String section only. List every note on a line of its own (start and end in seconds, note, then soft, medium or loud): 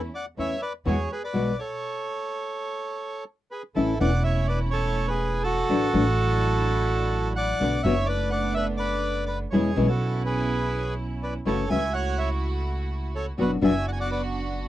0.37 0.58 A3 soft
0.37 0.58 C#4 soft
0.37 0.58 E4 soft
0.85 1.06 G#3 medium
0.85 1.06 E4 medium
0.85 1.06 F#4 medium
1.33 1.54 G#3 soft
1.33 1.54 E4 soft
1.33 1.54 F#4 soft
3.75 3.96 A3 soft
3.75 3.96 C#4 soft
3.75 3.96 E4 soft
3.99 5.60 A3 medium
3.99 5.60 C#4 medium
3.99 5.61 E4 medium
5.69 5.89 F#3 soft
5.69 5.90 D4 soft
5.69 5.90 E4 soft
5.93 7.53 F#3 medium
5.93 7.53 D4 medium
5.93 7.53 E4 medium
7.61 7.81 A3 soft
7.61 7.81 B3 soft
7.61 7.81 D4 medium
7.84 9.44 A3 medium
7.84 9.44 B3 medium
7.84 9.44 D4 medium
9.52 9.73 G#3 medium
9.52 9.73 C#4 soft
9.52 9.73 E4 medium
9.76 11.38 B3 medium
9.76 11.38 C#4 medium
9.76 11.38 E4 medium
11.46 11.66 A3 soft
11.46 11.67 E4 soft
11.46 11.67 F#4 medium
11.70 13.30 A3 medium
11.70 13.30 E4 medium
11.70 13.30 F#4 medium
13.38 13.59 B3 soft
13.38 13.59 D4 soft
13.38 13.59 F#4 soft
13.62 14.68 B3 medium
13.62 14.68 D4 medium
13.62 14.68 F#4 loud